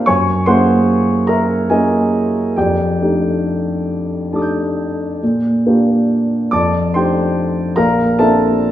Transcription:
0.00 0.10 A#3 soft
0.00 0.10 D4 soft
0.00 0.10 G4 medium
0.06 0.46 F#2 soft
0.06 0.45 C#5 medium
0.06 0.45 G#5 medium
0.06 0.47 C#6 medium
0.46 1.66 A#3 soft
0.46 1.66 C#4 soft
0.46 1.66 E4 soft
0.46 1.67 G#4 soft
0.46 1.24 C5 medium
0.46 1.25 F#5 medium
0.46 1.28 C6 medium
1.27 1.67 A#4 soft
1.27 1.67 E5 soft
1.27 1.69 A#5 medium
1.70 2.53 A#3 soft
1.70 2.53 C#4 soft
1.70 2.53 E4 soft
1.70 2.53 G#4 soft
1.70 2.53 D#5 soft
1.70 2.56 G#5 medium
2.56 2.99 F2 soft
2.56 3.01 G4 soft
2.56 3.84 D5 soft
2.56 3.87 G5 medium
3.01 4.28 A3 soft
3.01 4.28 D4 soft
3.01 4.28 D#4 soft
3.01 4.29 G4 soft
4.32 5.18 A3 soft
4.32 5.18 D4 soft
4.32 5.18 D#4 soft
4.32 5.18 G4 soft
4.32 5.18 A5 soft
4.32 5.19 D6 soft
4.38 5.21 D#6 soft
4.38 5.23 G6 soft
5.23 5.65 A#2 soft
5.67 6.48 A#3 soft
5.67 6.48 D4 soft
5.67 6.48 F4 soft
5.67 6.48 G4 soft
6.51 6.93 F2 soft
6.51 6.91 D5 soft
6.51 6.91 A5 soft
6.51 6.93 D6 medium
6.94 7.74 A3 soft
6.94 7.74 D4 soft
6.94 7.74 D#4 soft
6.94 7.74 G4 soft
6.94 7.74 C5 soft
6.94 7.74 G5 soft
6.94 7.77 C6 medium
7.76 8.17 A#1 soft
7.76 8.15 A#4 medium
7.76 8.16 F5 soft
7.76 8.18 A#5 medium
8.19 8.72 A#3 soft
8.19 8.72 C4 soft
8.19 8.72 D4 soft
8.19 8.72 F4 soft
8.19 8.72 A4 medium
8.19 8.72 E5 medium
8.19 8.72 A5 medium

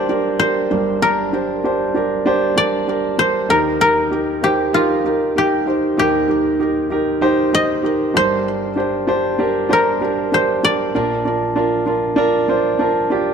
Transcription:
0.00 0.66 G1 soft
0.00 0.66 G2 soft
0.00 0.09 D4 medium
0.00 0.10 G4 medium
0.00 0.10 A#4 medium
0.00 0.69 A#4 medium
0.00 0.39 C5 medium
0.00 1.34 C5 medium
0.00 1.38 D5 medium
0.09 0.36 D4 medium
0.09 0.37 G4 medium
0.09 0.37 A#4 medium
0.39 0.67 D4 medium
0.39 0.67 G4 medium
0.39 0.67 A#4 medium
0.39 2.11 C5 medium
0.71 3.15 G1 medium
0.71 3.15 G2 soft
0.71 0.98 D4 medium
0.71 0.98 G4 medium
0.71 0.99 A#4 medium
1.02 1.29 D4 medium
1.02 1.29 G4 medium
1.02 2.86 A#4 medium
1.02 1.30 A#4 medium
1.33 1.60 D4 medium
1.33 1.60 G4 medium
1.33 1.61 C5 medium
1.64 1.91 D4 medium
1.64 1.91 G4 medium
1.64 1.92 C5 medium
1.94 2.22 D4 medium
1.94 2.22 G4 medium
1.94 2.23 A#4 medium
2.26 2.53 D4 medium
2.26 2.53 G4 medium
2.26 2.54 C5 medium
2.56 2.84 D4 medium
2.56 2.84 G4 medium
2.56 2.84 A#4 medium
2.56 4.18 D5 medium
2.87 3.15 D4 medium
2.87 3.15 G4 soft
2.87 3.16 A#4 medium
3.18 3.46 D4 medium
3.18 3.46 G4 soft
3.18 3.46 A#4 medium
3.18 4.91 C5 medium
3.49 5.94 D#2 soft
3.49 5.94 D#3 soft
3.49 3.77 D#4 medium
3.49 3.77 G4 medium
3.49 3.58 A#4 medium
3.49 3.77 A#4 medium
3.81 4.08 D#4 medium
3.81 4.08 G4 medium
3.81 5.65 A#4 medium
3.81 4.09 A#4 medium
4.11 4.39 D#4 medium
4.11 4.39 G4 medium
4.11 4.39 A#4 medium
4.42 4.70 D#4 medium
4.42 4.70 G4 soft
4.42 5.38 G4 medium
4.42 4.70 C5 medium
4.73 5.01 D#4 medium
4.73 6.93 F4 medium
4.73 5.01 G4 medium
4.73 5.01 A#4 medium
5.05 5.32 D#4 medium
5.05 5.32 G4 soft
5.05 5.33 A#4 medium
5.36 5.63 D#4 medium
5.36 5.63 G4 medium
5.36 5.99 G4 medium
5.36 5.64 A#4 medium
5.66 5.94 D#4 medium
5.66 5.94 G4 soft
5.66 5.94 C5 medium
5.97 8.11 D#2 soft
5.97 8.11 D#3 soft
5.97 6.25 D#4 medium
5.97 6.25 G4 medium
5.97 8.03 G4 medium
5.97 6.26 A#4 medium
6.28 6.56 D#4 medium
6.28 6.56 G4 medium
6.28 6.57 A#4 medium
6.59 6.87 D#4 medium
6.59 6.87 G4 medium
6.59 6.88 A#4 medium
6.90 7.18 D#4 medium
6.90 7.18 G4 medium
6.90 7.19 A#4 medium
7.21 7.49 D#4 medium
7.21 7.49 G4 medium
7.21 7.49 C5 medium
7.52 7.80 D#4 medium
7.52 7.80 G4 medium
7.52 7.81 C5 medium
7.52 9.09 D#5 medium
7.82 8.10 D#4 medium
7.82 8.11 G4 medium
7.82 8.11 A#4 medium
8.14 10.59 G1 soft
8.14 10.59 G2 soft
8.14 8.69 D4 medium
8.14 8.70 G4 medium
8.14 8.70 A#4 medium
8.14 9.88 C5 medium
8.76 9.04 D4 medium
8.76 9.04 G4 medium
8.76 9.04 C5 medium
9.07 9.35 D4 medium
9.07 9.35 G4 medium
9.07 9.36 C5 medium
9.39 9.66 D4 medium
9.39 9.66 G4 medium
9.39 9.67 A#4 medium
9.69 9.97 D4 medium
9.69 9.97 G4 medium
9.69 11.57 A#4 medium
9.69 9.98 C5 medium
10.01 10.28 D4 medium
10.01 10.29 G4 medium
10.01 10.29 A#4 medium
10.32 10.59 D4 medium
10.32 10.60 G4 medium
10.32 10.60 C5 medium
10.32 12.06 C5 medium
10.63 10.90 D4 medium
10.63 10.91 G4 medium
10.63 10.91 A#4 medium
10.63 12.77 D5 medium
10.95 13.34 A#1 soft
10.95 13.34 A#2 soft
10.95 11.22 D4 medium
10.95 11.22 F4 medium
10.95 11.22 A#4 medium
11.25 11.52 D4 medium
11.25 11.52 F4 medium
11.25 11.53 A#4 medium
11.56 11.83 D4 medium
11.56 11.83 F4 medium
11.56 11.84 A#4 medium
11.86 12.14 D4 medium
11.86 12.14 F4 medium
11.86 12.14 A#4 medium
12.16 12.44 D4 medium
12.16 12.45 F4 medium
12.16 12.45 A#4 loud
12.48 12.76 D4 medium
12.48 12.76 F4 medium
12.48 12.77 C5 medium
12.79 13.07 D4 medium
12.79 13.07 F4 medium
12.79 13.08 A#4 medium
13.10 13.34 D4 medium
13.10 13.34 F4 medium
13.10 13.34 G4 medium

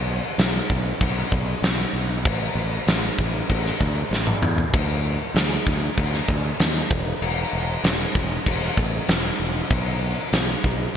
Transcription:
0.00 0.20 B1 medium
0.38 0.60 B1 medium
0.38 snare loud
0.38 crash medium
0.70 0.91 B1 medium
0.70 kick medium
1.01 1.22 B1 medium
1.01 kick medium
1.01 crash medium
1.32 1.53 B1 medium
1.32 kick medium
1.62 1.84 B1 medium
1.62 snare loud
1.62 crash medium
1.93 2.25 B1 medium
2.25 2.47 A1 loud
2.25 kick loud
2.25 crash medium
2.55 2.77 A1 loud
2.87 3.09 A1 medium
2.87 snare loud
2.87 crash medium
3.19 3.40 A1 medium
3.19 kick medium
3.50 3.71 A1 medium
3.50 kick medium
3.50 crash medium
3.66 snare soft
3.81 4.02 D2 medium
3.81 kick medium
4.11 4.33 A1 loud
4.11 snare medium
4.27 mid tom medium
4.42 4.64 E2 loud
4.42 mid tom loud
4.58 floor tom medium
4.74 5.17 D2 loud
4.74 kick loud
4.74 crash medium
5.34 5.56 D2 loud
5.34 snare loud
5.34 crash medium
5.67 5.88 D2 medium
5.67 kick medium
5.98 6.19 D2 medium
5.98 kick medium
5.98 crash medium
6.14 snare soft
6.29 6.50 D2 medium
6.29 kick medium
6.59 6.81 D#2 medium
6.59 snare loud
6.59 crash medium
6.76 snare soft
6.91 7.12 E1 medium
6.91 kick loud
7.22 7.43 E1 loud
7.22 crash medium
7.53 7.74 E1 medium
7.84 8.05 E1 loud
7.84 snare loud
7.84 crash medium
8.15 8.37 E1 medium
8.15 kick medium
8.46 8.68 E1 loud
8.46 kick medium
8.46 crash medium
8.63 snare soft
8.77 8.99 A1 medium
8.77 kick medium
9.08 9.30 E1 medium
9.08 snare loud
9.08 crash medium
9.40 9.61 E1 medium
9.70 10.14 B1 loud
9.70 kick loud
9.70 crash medium
10.33 10.54 B1 medium
10.33 snare loud
10.33 crash medium
10.64 10.85 B1 loud
10.64 kick medium

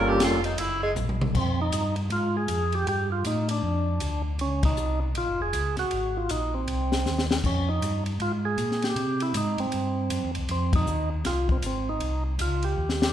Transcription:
0.00 0.19 G1 loud
0.00 0.40 G3 medium
0.00 0.40 A#3 medium
0.00 0.41 C#4 medium
0.00 0.41 F4 medium
0.00 0.41 A4 medium
0.08 0.25 G4 loud
0.20 0.57 F1 medium
0.20 0.44 F4 loud
0.20 snare medium
0.20 hi-hat pedal medium
0.20 ride medium
0.44 0.61 D#4 loud
0.44 ride medium
0.58 0.95 F#1 medium
0.58 0.82 E4 loud
0.58 ride medium
0.83 0.91 G#3 loud
0.96 1.34 A#1 loud
0.96 floor tom medium
0.96 hi-hat pedal medium
1.09 floor tom medium
1.21 floor tom loud
1.34 1.72 F2 medium
1.34 1.60 C4 medium
1.34 kick medium
1.34 crash medium
1.62 1.96 D#4 medium
1.72 2.10 G2 medium
1.72 hi-hat pedal medium
1.72 ride medium
1.96 ride soft
2.10 2.47 G#2 medium
2.10 2.36 F4 loud
2.10 ride medium
2.37 2.75 G#4 loud
2.48 2.86 F2 medium
2.48 hi-hat pedal soft
2.48 ride medium
2.72 2.87 G4 medium
2.72 ride soft
2.87 3.24 G2 medium
2.87 3.10 G4 loud
2.87 ride medium
3.12 3.25 F4 loud
3.25 3.62 A2 medium
3.25 3.48 D#4 medium
3.25 hi-hat pedal medium
3.25 ride medium
3.49 4.22 D4 medium
3.49 ride medium
3.63 4.00 F2 medium
4.00 4.38 D2 medium
4.00 hi-hat pedal medium
4.00 ride medium
4.39 4.76 C#2 medium
4.39 4.63 C#4 medium
4.39 ride medium
4.63 5.00 D#4 loud
4.63 kick medium
4.63 ride medium
4.77 5.14 C2 medium
4.77 hi-hat pedal medium
5.15 5.28 A#1 medium
5.15 5.41 F4 medium
5.15 ride medium
5.29 5.41 F#1 medium
5.41 5.53 F1 medium
5.41 5.76 G#4 medium
5.53 5.76 C#2 medium
5.53 hi-hat pedal soft
5.53 ride medium
5.77 5.85 C#2 soft
5.77 6.18 F#4 loud
5.77 snare soft
5.77 ride soft
5.91 6.29 G#1 medium
5.91 ride medium
6.17 6.31 F4 medium
6.29 6.67 A#1 medium
6.29 6.55 D#4 medium
6.29 hi-hat pedal medium
6.29 ride medium
6.54 7.26 C4 medium
6.68 7.05 C2 medium
6.68 ride medium
6.92 snare medium
7.05 7.43 D#2 medium
7.05 snare soft
7.05 hi-hat pedal soft
7.19 snare medium
7.31 snare medium
7.44 7.81 F2 medium
7.44 7.70 C#4 medium
7.44 kick medium
7.44 crash medium
7.69 8.04 D#4 medium
7.82 8.19 G2 medium
7.82 hi-hat pedal medium
7.82 ride medium
8.06 ride soft
8.20 8.57 G#2 medium
8.20 8.32 F4 medium
8.20 ride medium
8.45 8.84 G#4 medium
8.58 8.95 A#2 medium
8.58 hi-hat pedal soft
8.58 ride medium
8.71 snare soft
8.82 9.23 G4 loud
8.82 snare soft
8.82 ride soft
8.96 9.33 C3 medium
8.96 ride medium
9.20 9.36 E4 medium
9.20 ride soft
9.34 9.57 G#2 medium
9.34 9.61 D#4 medium
9.34 hi-hat pedal medium
9.34 ride medium
9.58 9.66 G#2 soft
9.58 10.31 C4 medium
9.58 ride soft
9.72 10.10 G2 medium
9.72 ride medium
10.10 10.24 F#2 medium
10.10 hi-hat pedal medium
10.10 ride medium
10.25 10.37 E2 medium
10.35 10.48 C2 medium
10.35 ride soft
10.49 10.86 F2 medium
10.49 10.73 C4 medium
10.49 ride medium
10.73 11.10 D#4 medium
10.73 kick medium
10.73 ride medium
10.87 11.24 D#2 medium
10.87 hi-hat pedal medium
11.25 11.62 C2 medium
11.25 11.48 F4 medium
11.25 snare soft
11.25 ride medium
11.49 11.57 C4 medium
11.49 kick medium
11.62 12.00 G#1 medium
11.62 11.90 C4 medium
11.62 hi-hat pedal medium
11.62 ride medium
11.89 12.24 D#4 medium
12.00 12.38 C2 medium
12.00 ride medium
12.39 12.77 C#2 medium
12.39 12.65 F4 medium
12.39 hi-hat pedal medium
12.39 ride medium
12.62 13.12 G4 medium
12.62 ride soft
12.78 13.13 D#2 medium
12.89 snare soft
13.02 snare medium

